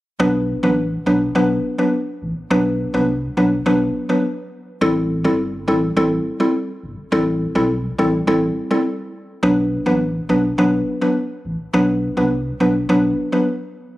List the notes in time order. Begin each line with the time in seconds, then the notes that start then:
0.20 B1 F#3 B3 D4 B4
0.63 A1 F#3 B3 D4 B4
1.06 B1 F#3 B3 D4 B4
1.35 B1 F#3 B3 D4 B4
1.78 F#3 B3 D4 B4
2.22 A1
2.50 B1 F#3 B3 D4 B4
2.94 C2 F#3 B3 D4 B4
3.37 B1 F#3 B3 D4 B4
3.66 B1 F#3 B3 D4 B4
4.09 F#3 B3 D4 B4
4.81 A1 G3 C4 E4 A4
5.24 G1 G3 C4 E4 A4
5.68 A1 G3 C4 E4 A4
5.97 A1 G3 C4 E4 A4
6.40 G3 C4 E4 A4
6.83 G1
7.12 A1 G3 C4 E4 A4
7.55 B1 G3 C4 E4 A4
7.98 A1 G3 C4 E4 A4
8.27 A1 G3 C4 E4 A4
8.71 G3 C4 E4 A4
9.43 B1 F#3 B3 D4 B4
9.86 A1 F#3 B3 D4 B4
10.29 B1 F#3 B3 D4 B4
10.58 B1 F#3 B3 D4 B4
11.01 F#3 B3 D4 B4
11.45 A1
11.74 B1 F#3 B3 D4 B4
12.17 C2 F#3 B3 D4 B4
12.60 B1 F#3 B3 D4 B4
12.89 B1 F#3 B3 D4 B4
13.32 F#3 B3 D4 B4